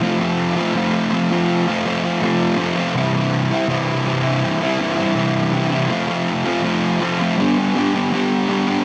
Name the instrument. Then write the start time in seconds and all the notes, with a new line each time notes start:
distorted electric guitar
0.01 F3 A3 C4 F4
0.20 A3 C4 F4
0.57 A3 C4 F4
0.75 F3 A3 C4 F4
1.11 F3 A3 C4 F4
1.30 A3 C4 F4
1.67 A3 C4 F4
1.85 F3 A3 C4 F4
2.03 A3 C4 F4
2.21 F3 A3 C4 F4
2.57 F3 A3 C4 F4
2.76 A3 C4 F4
2.95 C3 E3 G3 C4 E4
3.13 G3 C4 E4
3.50 G3 C4 E4
3.68 C3 E3 G3 C4 E4
4.05 E3 G3 C4 E4
4.23 G3 C4 E4
4.61 G3 C4 E4
4.78 E3 G3 C4 E4
4.97 G3 C4 E4
5.15 C3 E3 G3 C4 E4
5.51 E3 G3 C4 E4
5.71 G3 C4 E4
5.89 F3 A3 C4 F4
6.07 A3 C4 F4
6.46 A3 C4 F4
6.63 F3 A3 C4 F4
7.01 F3 A3 C4 F4
7.19 A3 C4 F4
7.38 G3 B3 D4 G4
7.57 B3 D4 G4
7.75 G3 B3 D4 G4
7.94 B3 D4 G4
8.12 G3 B3 D4 G4
8.48 G3 B3 D4 G4
8.67 B3 D4 G4